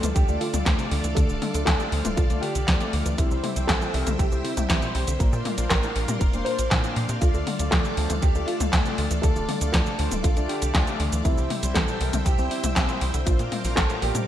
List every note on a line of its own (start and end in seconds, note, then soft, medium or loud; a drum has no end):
0.00 0.14 D2 medium
0.00 0.12 E3 medium
0.00 0.17 A4 loud
0.00 3.14 A4 medium
0.00 3.14 D5 medium
0.00 3.14 F5 medium
0.00 3.14 D6 medium
0.00 closed hi-hat medium
0.00 high tom medium
0.00 cabasa medium
0.14 0.26 D2 loud
0.14 0.25 D3 medium
0.14 0.39 G4 loud
0.14 kick loud
0.14 closed hi-hat medium
0.14 cabasa soft
0.28 0.39 D2 medium
0.28 0.40 D3 medium
0.28 0.53 A3 medium
0.28 0.53 D4 medium
0.28 0.53 F4 medium
0.28 0.53 D5 loud
0.28 cabasa soft
0.40 0.53 D3 loud
0.40 0.87 F4 medium
0.40 open hi-hat loud
0.54 0.64 D2 medium
0.54 0.62 D3 medium
0.54 closed hi-hat medium
0.54 high tom medium
0.54 cabasa medium
0.66 0.77 D2 loud
0.66 0.75 F3 medium
0.66 1.14 A3 medium
0.66 1.14 D4 medium
0.66 1.14 F4 medium
0.66 1.14 D5 loud
0.66 kick loud
0.66 snare loud
0.66 clap loud
0.66 closed hi-hat medium
0.66 cabasa soft
0.79 0.88 C3 medium
0.79 closed hi-hat soft
0.79 cabasa soft
0.91 1.02 D2 medium
0.91 1.00 D3 medium
0.91 open hi-hat loud
1.04 1.15 D2 medium
1.04 1.13 E3 medium
1.04 closed hi-hat medium
1.04 cabasa medium
1.15 1.27 D2 loud
1.15 1.25 D3 medium
1.15 1.52 A3 medium
1.15 1.52 D4 medium
1.15 1.52 F4 medium
1.15 1.63 A4 loud
1.15 1.51 D5 medium
1.15 kick loud
1.15 closed hi-hat medium
1.15 cabasa soft
1.29 1.40 D1 medium
1.29 1.41 D3 medium
1.29 cabasa soft
1.42 1.53 D3 loud
1.42 open hi-hat loud
1.42 high tom medium
1.54 1.65 D2 medium
1.54 1.63 D3 medium
1.54 1.89 A3 medium
1.54 1.89 D4 medium
1.54 1.89 F4 medium
1.54 1.89 D5 medium
1.54 closed hi-hat medium
1.54 cabasa medium
1.65 1.78 D2 loud
1.65 1.76 F3 medium
1.65 2.18 A4 loud
1.65 kick loud
1.65 snare loud
1.65 clap loud
1.65 closed hi-hat medium
1.65 cabasa soft
1.80 1.88 C3 medium
1.80 cabasa soft
1.92 2.03 D2 loud
1.92 2.01 D3 medium
1.92 2.07 A3 medium
1.92 2.07 D4 medium
1.92 2.07 F4 medium
1.92 2.07 C5 loud
1.92 open hi-hat loud
2.05 2.15 D1 medium
2.05 2.14 E3 medium
2.05 closed hi-hat medium
2.05 high tom medium
2.05 cabasa medium
2.16 2.28 C2 loud
2.16 2.26 D3 medium
2.16 2.40 F4 medium
2.16 kick loud
2.16 closed hi-hat medium
2.16 cabasa soft
2.30 2.41 C2 medium
2.30 2.41 D3 medium
2.30 2.54 A3 medium
2.30 2.54 D4 medium
2.30 2.54 F4 medium
2.30 2.54 D5 loud
2.30 closed hi-hat soft
2.30 cabasa soft
2.41 2.54 D3 loud
2.41 2.89 G4 loud
2.41 open hi-hat loud
2.55 2.66 C2 medium
2.55 2.64 D3 medium
2.55 closed hi-hat medium
2.55 cabasa medium
2.68 2.78 D2 loud
2.68 2.77 F3 medium
2.68 3.15 A3 medium
2.68 3.15 D4 medium
2.68 3.15 F4 medium
2.68 3.15 D5 loud
2.68 kick loud
2.68 snare loud
2.68 clap loud
2.68 closed hi-hat medium
2.68 cabasa soft
2.80 2.89 C3 medium
2.80 closed hi-hat soft
2.80 cabasa soft
2.93 3.04 D2 medium
2.93 3.02 D3 medium
2.93 open hi-hat loud
3.06 3.16 D2 medium
3.06 3.15 E3 medium
3.06 closed hi-hat medium
3.06 cabasa medium
3.17 3.29 C2 loud
3.17 3.27 C3 medium
3.17 3.53 G3 medium
3.17 3.53 C4 medium
3.17 3.70 E4 loud
3.17 3.53 E4 medium
3.17 3.53 C5 medium
3.17 5.18 C5 medium
3.17 5.18 E5 medium
3.17 5.18 G5 medium
3.17 5.18 E6 medium
3.17 kick loud
3.17 closed hi-hat medium
3.17 cabasa soft
3.31 3.42 C2 medium
3.31 3.42 C3 medium
3.31 cabasa soft
3.44 3.55 C3 loud
3.44 open hi-hat loud
3.44 high tom medium
3.56 3.67 C2 medium
3.56 3.65 C3 medium
3.56 3.91 G3 medium
3.56 3.91 C4 medium
3.56 3.91 E4 medium
3.56 3.91 C5 medium
3.56 closed hi-hat medium
3.56 cabasa medium
3.67 3.79 C2 loud
3.67 3.78 E3 medium
3.67 4.20 A4 loud
3.67 kick loud
3.67 snare loud
3.67 clap loud
3.67 closed hi-hat medium
3.67 cabasa medium
3.81 3.90 A#2 medium
3.81 cabasa soft
3.94 4.05 C2 loud
3.94 4.03 C3 medium
3.94 4.09 G3 medium
3.94 4.09 C4 medium
3.94 4.09 E4 medium
3.94 4.09 A#4 loud
3.94 open hi-hat loud
4.07 4.17 C2 medium
4.07 4.15 D3 medium
4.07 closed hi-hat medium
4.07 high tom medium
4.07 cabasa medium
4.18 4.30 C2 loud
4.18 4.28 C3 medium
4.18 4.24 G4 loud
4.18 kick loud
4.18 closed hi-hat medium
4.18 cabasa medium
4.32 4.42 C2 medium
4.32 4.43 C3 medium
4.32 4.56 G3 medium
4.32 4.56 C4 medium
4.32 4.56 E4 medium
4.32 4.56 C5 loud
4.32 cabasa soft
4.43 4.56 C3 loud
4.43 4.91 E4 medium
4.43 open hi-hat loud
4.57 4.68 C2 medium
4.57 4.66 C3 medium
4.57 closed hi-hat medium
4.57 high tom medium
4.57 cabasa medium
4.70 4.80 C2 loud
4.70 4.78 E3 medium
4.70 5.17 G3 medium
4.70 5.17 C4 medium
4.70 5.17 E4 medium
4.70 5.17 C5 loud
4.70 kick loud
4.70 snare loud
4.70 clap loud
4.70 closed hi-hat medium
4.70 cabasa soft
4.82 4.91 A#2 medium
4.82 closed hi-hat soft
4.82 cabasa soft
4.95 5.05 C2 medium
4.95 5.04 C3 medium
4.95 open hi-hat loud
5.08 5.18 C2 medium
5.08 5.16 D3 medium
5.08 closed hi-hat medium
5.08 cabasa medium
5.19 5.31 A#1 loud
5.19 5.29 A#2 medium
5.19 5.55 A#3 medium
5.19 5.55 D4 medium
5.19 5.55 F4 medium
5.19 5.68 A#4 medium
5.19 7.20 A#4 medium
5.19 5.55 C5 medium
5.19 11.21 D5 medium
5.19 11.21 F5 medium
5.19 7.20 C6 medium
5.19 kick loud
5.19 closed hi-hat medium
5.19 cabasa soft
5.33 5.43 A#2 medium
5.33 5.44 A#2 medium
5.33 cabasa soft
5.45 5.57 A#2 loud
5.45 open hi-hat loud
5.45 high tom medium
5.58 5.68 A#1 medium
5.58 5.67 A#2 medium
5.58 5.93 A#3 medium
5.58 5.93 D4 medium
5.58 5.93 F4 medium
5.58 5.93 C5 loud
5.58 closed hi-hat medium
5.58 cabasa medium
5.69 5.81 A#1 loud
5.69 5.79 D3 medium
5.69 6.18 A#4 loud
5.69 kick loud
5.69 snare loud
5.69 clap loud
5.69 closed hi-hat medium
5.69 cabasa medium
5.83 5.92 A2 medium
5.83 cabasa soft
5.96 6.06 A#1 loud
5.96 6.04 A#2 medium
5.96 6.11 A#3 medium
5.96 6.11 D4 medium
5.96 6.11 F4 medium
5.96 6.11 A#4 loud
5.96 open hi-hat loud
6.08 6.19 A#2 medium
6.08 6.17 C3 medium
6.08 closed hi-hat medium
6.08 high tom medium
6.08 cabasa medium
6.19 6.31 F1 loud
6.19 6.30 A#2 medium
6.19 6.25 A#4 loud
6.19 kick loud
6.19 closed hi-hat medium
6.19 cabasa medium
6.33 6.44 F1 medium
6.33 6.45 A#2 medium
6.33 6.58 A#3 medium
6.33 6.58 D4 medium
6.33 6.58 F4 medium
6.33 6.58 C5 loud
6.33 closed hi-hat soft
6.33 cabasa soft
6.45 6.58 A#2 loud
6.45 6.92 C5 loud
6.45 open hi-hat loud
6.59 6.69 A#1 medium
6.59 6.68 A#2 medium
6.59 closed hi-hat medium
6.59 cabasa medium
6.71 6.82 A#2 loud
6.71 6.80 D3 medium
6.71 7.19 A#3 medium
6.71 7.19 D4 medium
6.71 7.19 F4 medium
6.71 7.19 C5 loud
6.71 kick loud
6.71 snare loud
6.71 clap loud
6.71 closed hi-hat medium
6.71 cabasa medium
6.84 6.93 A2 medium
6.84 closed hi-hat soft
6.84 cabasa soft
6.96 7.07 A#2 loud
6.96 7.05 A#2 medium
6.96 open hi-hat loud
7.09 7.20 A#2 medium
7.09 7.18 C3 medium
7.09 closed hi-hat medium
7.09 cabasa medium
7.20 7.32 D2 loud
7.20 7.31 D3 medium
7.20 7.57 A3 medium
7.20 7.57 D4 medium
7.20 7.68 F4 loud
7.20 7.57 F4 medium
7.20 11.21 A4 medium
7.20 7.57 D5 medium
7.20 11.21 D6 medium
7.20 kick loud
7.20 closed hi-hat medium
7.20 cabasa medium
7.34 7.45 D2 medium
7.34 7.46 D3 medium
7.34 cabasa soft
7.47 7.58 D3 loud
7.47 open hi-hat loud
7.47 high tom medium
7.59 7.70 D2 medium
7.59 7.68 D3 medium
7.59 7.94 A3 medium
7.59 7.94 D4 medium
7.59 7.94 F4 medium
7.59 7.94 D5 medium
7.59 closed hi-hat soft
7.59 cabasa medium
7.71 7.83 D2 loud
7.71 7.81 F3 medium
7.71 8.18 A4 loud
7.71 kick loud
7.71 snare loud
7.71 clap medium
7.71 closed hi-hat medium
7.71 cabasa medium
7.85 7.94 C3 medium
7.85 cabasa soft
7.97 8.08 D2 loud
7.97 8.06 D3 medium
7.97 8.13 A3 medium
7.97 8.13 D4 medium
7.97 8.13 F4 medium
7.97 8.13 C5 loud
7.97 open hi-hat loud
8.10 8.21 D2 medium
8.10 8.19 E3 medium
8.10 closed hi-hat medium
8.10 high tom medium
8.10 cabasa medium
8.21 8.33 D2 loud
8.21 8.31 D3 medium
8.21 8.48 G4 loud
8.21 kick loud
8.21 closed hi-hat medium
8.21 cabasa medium
8.35 8.46 D2 medium
8.35 8.47 D3 medium
8.35 8.59 A3 medium
8.35 8.59 D4 medium
8.35 8.59 F4 medium
8.35 8.59 D5 loud
8.35 cabasa soft
8.47 8.59 D3 loud
8.47 8.94 F4 loud
8.47 open hi-hat loud
8.60 8.71 D2 medium
8.60 8.69 D3 medium
8.60 closed hi-hat medium
8.60 high tom medium
8.60 cabasa medium
8.73 8.84 D2 loud
8.73 8.82 F3 medium
8.73 9.20 A3 medium
8.73 9.20 D4 medium
8.73 9.20 F4 medium
8.73 9.20 D5 loud
8.73 kick loud
8.73 snare loud
8.73 clap loud
8.73 closed hi-hat medium
8.73 cabasa medium
8.86 8.94 C3 medium
8.86 closed hi-hat soft
8.86 cabasa soft
8.98 9.09 D2 loud
8.98 9.07 D3 medium
8.98 open hi-hat loud
9.11 9.21 D2 medium
9.11 9.20 E3 medium
9.11 closed hi-hat soft
9.11 cabasa medium
9.22 9.34 D2 loud
9.22 9.32 D3 medium
9.22 9.58 A3 medium
9.22 9.58 D4 medium
9.22 9.58 F4 medium
9.22 9.71 A4 loud
9.22 9.58 D5 medium
9.22 kick loud
9.22 closed hi-hat medium
9.22 cabasa medium
9.36 9.47 D1 medium
9.36 9.47 D3 medium
9.36 cabasa soft
9.49 9.60 D3 loud
9.49 open hi-hat loud
9.49 high tom medium
9.61 9.72 D2 medium
9.61 9.70 D3 medium
9.61 9.96 A3 medium
9.61 9.96 D4 medium
9.61 9.96 F4 medium
9.61 9.96 D5 loud
9.61 closed hi-hat medium
9.61 cabasa medium
9.72 9.84 D2 loud
9.72 9.83 F3 medium
9.72 10.25 A4 loud
9.72 kick loud
9.72 snare loud
9.72 clap loud
9.72 closed hi-hat medium
9.72 cabasa medium
9.86 9.95 C3 medium
9.86 cabasa soft
9.99 10.10 D2 medium
9.99 10.08 D3 medium
9.99 10.14 A3 medium
9.99 10.14 D4 medium
9.99 10.14 F4 medium
9.99 10.14 C5 loud
9.99 open hi-hat loud
10.12 10.22 D1 medium
10.12 10.20 E3 medium
10.12 closed hi-hat medium
10.12 high tom medium
10.12 cabasa medium
10.23 10.35 C2 loud
10.23 10.33 D3 medium
10.23 10.47 F4 loud
10.23 kick loud
10.23 closed hi-hat medium
10.23 cabasa medium
10.37 10.47 C2 medium
10.37 10.48 D3 medium
10.37 10.61 A3 loud
10.37 10.61 D4 medium
10.37 10.61 F4 medium
10.37 10.61 D5 loud
10.37 closed hi-hat soft
10.37 cabasa soft
10.48 10.61 D3 loud
10.48 10.96 G4 medium
10.48 open hi-hat loud
10.62 10.73 C2 medium
10.62 10.71 D3 medium
10.62 closed hi-hat medium
10.62 cabasa medium
10.75 10.85 D2 loud
10.75 10.83 F3 medium
10.75 11.22 A3 loud
10.75 11.22 D4 medium
10.75 11.22 F4 medium
10.75 11.22 D5 loud
10.75 kick loud
10.75 snare loud
10.75 clap loud
10.75 closed hi-hat medium
10.75 cabasa medium
10.87 10.96 C3 medium
10.87 closed hi-hat soft
10.87 cabasa soft
11.00 11.10 D2 medium
11.00 11.09 D3 medium
11.00 open hi-hat loud
11.12 11.23 D2 medium
11.12 11.21 E3 medium
11.12 closed hi-hat medium
11.12 cabasa medium
11.24 11.36 C2 loud
11.24 11.34 C3 medium
11.24 11.60 G3 medium
11.24 11.60 C4 medium
11.24 11.76 E4 medium
11.24 11.60 E4 medium
11.24 11.60 C5 medium
11.24 14.27 C5 medium
11.24 13.25 E5 medium
11.24 13.25 G5 medium
11.24 13.25 E6 medium
11.24 kick loud
11.24 closed hi-hat medium
11.24 cabasa medium
11.38 11.48 C2 medium
11.38 11.49 C3 medium
11.38 cabasa soft
11.50 11.62 C3 loud
11.50 open hi-hat loud
11.50 high tom medium
11.63 11.73 C2 medium
11.63 11.72 C3 medium
11.63 11.98 G3 medium
11.63 11.98 C4 medium
11.63 11.98 E4 medium
11.63 11.98 C5 medium
11.63 closed hi-hat medium
11.63 cabasa medium
11.74 11.86 C2 loud
11.74 11.84 E3 medium
11.74 12.22 A4 loud
11.74 kick loud
11.74 snare loud
11.74 clap loud
11.74 closed hi-hat medium
11.74 cabasa soft
11.88 11.97 A#2 medium
11.88 cabasa soft
12.01 12.11 C2 loud
12.01 12.10 C3 medium
12.01 12.16 G3 medium
12.01 12.16 C4 medium
12.01 12.16 E4 medium
12.01 12.16 A#4 loud
12.01 open hi-hat loud
12.13 12.24 C2 medium
12.13 12.22 D3 medium
12.13 closed hi-hat medium
12.13 high tom medium
12.13 cabasa medium
12.25 12.36 C2 loud
12.25 12.35 C3 medium
12.25 12.51 G4 loud
12.25 kick loud
12.25 closed hi-hat medium
12.25 cabasa medium
12.38 12.49 C2 medium
12.38 12.50 C3 medium
12.38 12.63 G3 medium
12.38 12.63 C4 medium
12.38 12.63 E4 medium
12.38 12.63 C5 loud
12.38 cabasa soft
12.50 12.63 C3 loud
12.50 12.97 E4 medium
12.50 open hi-hat loud
12.64 12.74 C2 medium
12.64 12.73 C3 medium
12.64 closed hi-hat medium
12.64 high tom medium
12.64 cabasa medium
12.76 12.87 C2 loud
12.76 12.85 E3 medium
12.76 13.24 G3 medium
12.76 13.24 C4 medium
12.76 13.24 E4 medium
12.76 13.24 C5 loud
12.76 kick loud
12.76 snare loud
12.76 clap loud
12.76 closed hi-hat medium
12.76 cabasa medium
12.89 12.98 A#2 medium
12.89 closed hi-hat soft
12.89 cabasa soft
13.01 13.12 C2 loud
13.01 13.10 C3 medium
13.01 open hi-hat loud
13.14 13.25 C2 medium
13.14 13.23 D3 medium
13.14 closed hi-hat medium
13.14 cabasa medium
13.25 13.37 A#1 loud
13.25 13.36 A#2 medium
13.25 13.62 A#3 medium
13.25 13.62 D4 medium
13.25 13.78 F4 medium
13.25 13.62 F4 medium
13.25 13.62 C5 medium
13.25 14.27 F5 medium
13.25 14.27 A#5 medium
13.25 14.27 D6 medium
13.25 kick loud
13.25 closed hi-hat medium
13.25 cabasa medium
13.39 13.50 A#2 medium
13.39 13.51 A#2 medium
13.39 closed hi-hat soft
13.39 cabasa soft
13.52 13.63 A#2 loud
13.52 open hi-hat loud
13.52 high tom medium
13.64 13.75 A#1 medium
13.64 13.73 A#2 medium
13.64 13.99 A#3 medium
13.64 13.99 D4 medium
13.64 13.99 F4 medium
13.64 13.99 C5 medium
13.64 open hi-hat medium
13.64 cabasa medium
13.76 13.88 A#1 loud
13.76 13.86 D3 medium
13.76 14.02 A4 loud
13.76 kick loud
13.76 snare loud
13.76 clap loud
13.76 closed hi-hat medium
13.76 cabasa medium
13.90 13.99 A2 medium
13.90 closed hi-hat soft
13.90 cabasa soft
14.01 14.13 A#1 loud
14.01 14.11 A#2 medium
14.01 14.18 A#3 medium
14.01 14.18 D4 medium
14.01 14.18 F4 medium
14.01 14.27 G4 loud
14.01 14.18 A#4 loud
14.01 open hi-hat loud
14.15 14.26 A#2 medium
14.15 14.24 C3 medium
14.15 closed hi-hat medium
14.15 high tom medium
14.15 cabasa medium